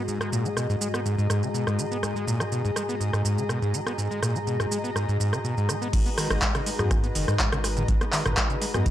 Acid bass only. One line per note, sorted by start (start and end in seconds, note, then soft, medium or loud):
0.08 0.19 G#2 medium
0.21 0.30 G#3 medium
0.32 0.47 A#2 loud
0.45 0.49 G#3 medium
0.57 0.67 B2 medium
0.70 0.76 G#2 loud
0.81 0.88 G#3 medium
0.94 1.00 B3 medium
1.06 1.16 G#2 medium
1.18 1.28 G#2 medium
1.30 1.44 G#2 loud
1.43 1.49 C#3 medium
1.54 1.65 B2 medium
1.67 1.80 G#2 loud
1.79 1.86 D#3 medium
1.91 1.98 B3 medium
2.03 2.14 G#2 medium
2.16 2.25 G#3 medium
2.27 2.42 A#2 loud
2.40 2.44 G#3 loud
2.52 2.62 B2 medium
2.65 2.71 G#2 medium
2.76 2.83 G#3 medium
2.89 2.95 B3 medium
3.01 3.11 G#2 medium
3.13 3.23 G#2 loud
3.25 3.39 G#2 loud
3.38 3.44 C#3 medium
3.49 3.60 B2 medium
3.62 3.75 G#2 loud
3.74 3.81 D#3 medium
3.86 3.93 B3 medium
3.98 4.09 G#2 medium
4.11 4.21 G#3 medium
4.22 4.37 A#2 loud
4.35 4.39 G#3 medium
4.47 4.58 B2 medium
4.60 4.66 G#2 loud
4.71 4.78 G#3 medium
4.84 4.91 B3 medium
4.96 5.06 G#2 medium
5.09 5.18 G#2 medium
5.20 5.34 G#2 loud
5.33 5.39 C#3 medium
5.44 5.55 B2 medium
5.57 5.70 G#2 loud
5.69 5.76 D#3 medium
5.82 5.88 B3 medium
5.93 6.00 G#2 medium
6.06 6.10 B3 medium
6.18 6.28 D#3 medium
6.30 6.37 G#1 medium
6.42 6.53 G#3 medium
6.55 6.61 C#3 medium
6.66 6.71 G#3 medium
6.79 6.92 F#2 medium
6.91 6.98 G#2 medium
7.04 7.07 B3 medium
7.15 7.26 D#3 medium
7.28 7.34 G#2 medium
7.40 7.50 G#3 medium
7.52 7.59 C#3 medium
7.64 7.68 G#3 medium
7.77 7.83 D#3 loud
7.88 7.95 G#2 medium
8.01 8.05 B3 medium
8.13 8.23 D#3 medium
8.26 8.32 G#1 medium
8.37 8.48 G#3 medium
8.50 8.56 C#3 medium
8.62 8.66 G#3 medium
8.74 8.87 F#2 medium
8.86 8.91 G#2 medium